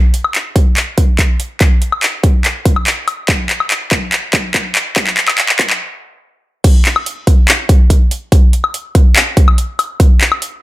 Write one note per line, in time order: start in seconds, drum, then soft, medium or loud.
0.14 closed hi-hat medium
0.24 high woodblock medium
0.35 clap medium
0.35 closed hi-hat medium
0.56 kick loud
0.56 closed hi-hat medium
0.77 clap medium
0.77 closed hi-hat medium
0.98 kick loud
0.98 closed hi-hat medium
1.19 kick medium
1.19 clap medium
1.19 closed hi-hat medium
1.40 closed hi-hat medium
1.61 kick loud
1.61 clap medium
1.61 closed hi-hat medium
1.82 closed hi-hat medium
1.92 high woodblock medium
2.03 clap medium
2.03 closed hi-hat medium
2.24 kick loud
2.24 closed hi-hat medium
2.45 clap medium
2.45 closed hi-hat medium
2.65 kick loud
2.65 closed hi-hat medium
2.76 high woodblock medium
2.87 clap medium
2.87 closed hi-hat medium
3.08 closed hi-hat medium
3.08 high woodblock medium
3.28 kick loud
3.28 clap medium
3.28 closed hi-hat medium
3.50 clap medium
3.50 closed hi-hat medium
3.60 high woodblock medium
3.71 clap medium
3.71 closed hi-hat medium
3.91 kick loud
3.91 clap medium
3.91 closed hi-hat medium
4.12 clap medium
4.12 closed hi-hat medium
4.33 kick loud
4.33 clap medium
4.33 closed hi-hat medium
4.54 kick medium
4.54 clap medium
4.54 closed hi-hat medium
4.75 clap medium
4.75 closed hi-hat medium
4.96 kick loud
4.96 clap medium
4.96 closed hi-hat medium
5.07 clap medium
5.17 clap loud
5.17 closed hi-hat medium
5.28 clap medium
5.28 high woodblock medium
5.38 clap medium
5.38 closed hi-hat medium
5.49 clap medium
5.59 kick loud
5.59 clap loud
5.59 closed hi-hat medium
5.70 clap medium
6.64 kick loud
6.64 closed hi-hat medium
6.64 crash loud
6.85 clap medium
6.85 closed hi-hat medium
6.96 high woodblock medium
7.06 closed hi-hat medium
7.27 kick loud
7.27 closed hi-hat medium
7.48 clap loud
7.48 closed hi-hat medium
7.69 kick loud
7.69 closed hi-hat medium
7.90 kick medium
7.90 closed hi-hat medium
8.11 closed hi-hat medium
8.32 kick loud
8.32 closed hi-hat medium
8.53 closed hi-hat medium
8.64 high woodblock medium
8.74 closed hi-hat medium
8.95 kick loud
8.95 closed hi-hat medium
9.16 clap loud
9.16 closed hi-hat medium
9.37 kick loud
9.37 closed hi-hat medium
9.48 high woodblock medium
9.58 closed hi-hat medium
9.79 closed hi-hat medium
9.79 high woodblock medium
10.00 kick loud
10.00 closed hi-hat medium
10.21 clap medium
10.21 closed hi-hat medium
10.32 high woodblock medium
10.42 closed hi-hat medium